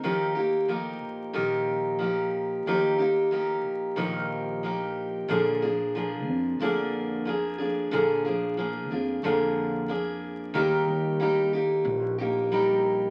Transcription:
<<
  \new Staff \with { instrumentName = "Steel-string acoustic guitar" } { \time 4/4 \key ees \major \tempo 4 = 91 <ees f bes ees' g'>8 <bes ees' g'>8 <f bes ees' g'>4 <ees f bes ees' g'>4 <f bes ees' g'>4 | <ees f bes ees' g'>8 <bes ees' g'>8 <f bes ees' g'>4 <ees f bes ees' g'>4 <f bes ees' g'>4 | <bes, d f bes d' aes'>8 <f bes d' aes'>8 <f bes d' aes'>4 <bes, d f bes d' aes'>4 <f bes d' aes'>8 <f bes d' aes'>8 | <bes, d f bes d' aes'>8 <f bes d' aes'>8 <f bes d' aes'>8 <f bes d' aes'>8 <bes, d f bes d' aes'>4 <f bes d' aes'>4 |
<ees g bes ees' g'>4 <g bes ees' g'>8 <bes ees' g'>4 <bes ees' g'>8 <g bes ees' g'>4 | }
  \new Staff \with { instrumentName = "Upright bass" } { \clef bass \time 4/4 \key ees \major ees,4. bes,,8 bes,,2 | ees,4. bes,,8 bes,,2 | bes,,4. f,8 f,2 | bes,,4. f,8 f,2 |
ees,8 ees,4. bes,,2 | }
>>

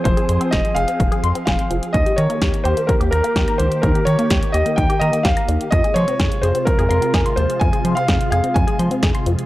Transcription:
<<
  \new Staff \with { instrumentName = "Grand piano" } { \time 4/4 \key f \minor \tempo 4 = 127 c''4 ees''8 f''4. f''4 | ees''8 des''4 c''8 bes'8 bes'4 c''8 | bes'8 des''4 ees''8 g''8 ees''8 f''4 | ees''8 des''4 c''8 bes'8 bes'4 c''8 |
aes''8. f''8. f''8 aes''4. r8 | }
  \new Staff \with { instrumentName = "Synth arpeggio sound" } { \time 4/4 \key f \minor f16 aes'16 c'''16 c'16 aes'16 r16 aes'16 c'16 f16 aes'16 c'''16 c'16 aes'16 c'''16 f16 r16 | ees16 g'16 bes''16 bes16 g'16 r16 g'16 bes16 ees16 g'16 bes''16 bes16 g'16 bes''16 ees16 r16 | ees16 g'16 bes''16 bes16 g'16 r16 g'16 bes16 ees16 g'16 bes''16 bes16 g'16 bes''16 ees16 r16 | f16 aes'16 c'''16 c'16 aes'16 r16 aes'16 c'16 f16 aes'16 c'''16 c'16 aes'16 c'''16 f16 r16 |
f16 aes'16 c'''16 c'16 aes'16 r16 aes'16 c'16 f16 aes'16 c'''16 c'16 aes'16 c'''16 f16 r16 | }
  \new Staff \with { instrumentName = "String machine" } { \time 4/4 \key f \minor <f c' aes'>1 | <ees bes g'>1~ | <ees bes g'>1 | <c aes f'>1~ |
<c aes f'>1 | }
  \new Staff \with { instrumentName = "Analog synth bass" } { \clef bass \time 4/4 \key f \minor f,,16 r16 f,16 r16 f,,16 r16 f,,16 r16 f,,16 r16 f,16 r16 f,,16 r16 f,,16 r16 | ees,16 r16 ees16 r16 ees,16 r16 ees,16 r8 ees,16 ees,16 r16 ees,16 r16 des,16 r16 | ees,16 r16 ees16 r16 ees,16 r16 ees,16 r16 ees,16 r16 ees16 r16 ees,16 r16 ees,16 r16 | f,16 r16 f16 r16 f,16 r16 f,16 r8 f,16 f,16 r16 f,16 r16 ees,16 r16 |
f,16 r16 f16 r16 f,16 r16 f,16 r16 f,16 r16 f16 r16 f,16 r16 f,16 r16 | }
  \new DrumStaff \with { instrumentName = "Drums" } \drummode { \time 4/4 <hh bd>16 hh16 hh16 hh16 <hh bd sn>16 hh16 hh16 hh16 <hh bd>16 hh16 hh16 hh16 <hh bd sn>16 hh16 hh16 hh16 | <hh bd>16 hh16 hh16 hh16 <hh bd sn>16 hh16 hh16 hh16 <hh bd>16 hh16 hh16 hh16 <hh bd sn>16 hh16 hh16 hh16 | <hh bd>16 hh16 hh16 hh16 <hh bd sn>16 hh16 hh16 hh16 <hh bd>16 hh16 hh16 hh16 <hh bd sn>16 hh16 hh16 hh16 | <hh bd>16 hh16 hh16 hh16 <hh bd sn>16 hh16 hh16 hh16 <hh bd>16 hh16 hh16 hh16 <hh bd sn>16 hh16 hh16 hh16 |
<hh bd>16 hh16 hh16 hh16 <hh bd sn>16 hh16 hh16 hh16 <hh bd>16 hh16 hh16 hh16 <hh bd sn>16 hh16 hh16 hh16 | }
>>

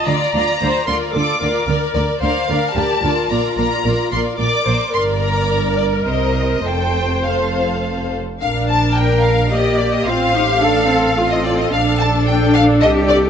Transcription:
<<
  \new Staff \with { instrumentName = "Violin section" } { \time 3/4 \key bes \major \tempo 4 = 109 bes''8 bes''4 c'''8 d'''4 | r8 d''8 f''4 a''4 | bes''8 bes''4 c'''8 d'''4 | c'''8 bes''4 d''8 ees''4 |
g''4 f''4. r8 | f''8 a''8 g''8 f''8 ees''8 d''16 ees''16 | f''2~ f''16 ees''16 d''16 ees''16 | f''8 a''8 g''8 f''8 ees''8 d''8 | }
  \new Staff \with { instrumentName = "Violin section" } { \time 3/4 \key bes \major <f' d''>8 <f' d''>8 <f' d''>8 <f' d''>8 <f' d''>8 <f' d''>8 | <bes' d''>8 <bes' d''>8 <bes' d''>8 <bes' d''>8 <bes' d''>8 <bes' d''>8 | <bes' d''>8 <bes' d''>8 <bes' d''>8 <bes' d''>8 <bes' d''>8 <bes' d''>8 | <bes' d''>2 <bes' c''>4 |
<a' c''>4 <a' c''>4. r8 | f''8 a''8 g''8 f''8 ees''8 d''16 ees''16 | f''2~ f''16 ees''16 d''16 ees''16 | f''8 a''8 g''8 f''8 ees''8 d''8 | }
  \new Staff \with { instrumentName = "Viola section" } { \time 3/4 \key bes \major << { d''4 c''8 bes'8 a'8 bes'8~ | bes'4 c''8 bes'8 g'8 f'8~ | f'2 d''8 c''8 | bes'2. |
c''2~ c''8 r8 | bes'2 d''4 | c''4 a'4 a'4~ | a'2. | } \\ { r2. | r2. | r2. | r2. |
r2. | d'2 bes4 | c'8 ees'8 d'8 c'8 c'4 | d'2. | } >> }
  \new Staff \with { instrumentName = "Cello section" } { \clef bass \time 3/4 \key bes \major d8 d8 d8 d8 d8 d8 | d8 d8 d8 d8 d8 d8 | bes,8 bes,8 bes,8 bes,8 bes,8 bes,8 | g,2 c4 |
f,2~ f,8 r8 | r4 bes'4 g'4 | f'8 g'8 a'4 f'4 | d'2 g'4 | }
  \new Staff \with { instrumentName = "Double bass section" } { \clef bass \time 3/4 \key bes \major d,8 d,8 d,8 d,8 d,8 d,8 | d,8 d,8 d,8 d,8 d,8 d,8 | bes,,8 bes,,8 bes,,8 bes,,8 bes,,8 bes,,8 | g,,2 c,4 |
f,,2~ f,,8 r8 | bes,,2. | a,,2. | bes,,2 c,4 | }
>>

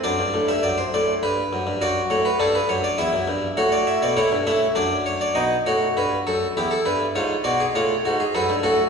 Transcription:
<<
  \new Staff \with { instrumentName = "Harpsichord" } { \time 3/4 \key d \mixolydian \tempo 4 = 101 << { d''8. e''16 d''16 c''16 d''8 b'4 | d''8 cis''16 b'16 a'16 b'16 cis''16 d''16 e''4 | cis''16 d''16 e''16 d''16 cis''8 e''8 d''8 cis''16 d''16 | dis''8 cis''8 b'8 a'8 g'16 a'16 b'8 |
cis''8 d''8 cis''4 b'8 a'8 | } \\ { d'2. | fis'4 d'4 e'4 | fis'4 e'8 cis'8 d'4 | dis'8 fis'4. e'4 |
eis'8 fis'16 gis'16 eis'8 fis'16 gis'16 a'8 fis'8 | } >> }
  \new Staff \with { instrumentName = "Harpsichord" } { \clef bass \time 3/4 \key d \mixolydian fis,16 g,16 a,16 g,16 fis,8 a,8 g,8 fis,16 g,16 | fis,8 a,8 g,8 fis,8 e,16 fis,16 g,8 | a,8. b,16 a,16 g,16 a,8 fis,4 | b,8 a,8 g,8 fis,8 e,8 g,8 |
gis,8 b,8 a,8 gis,8 fis,16 g,16 a,8 | }
>>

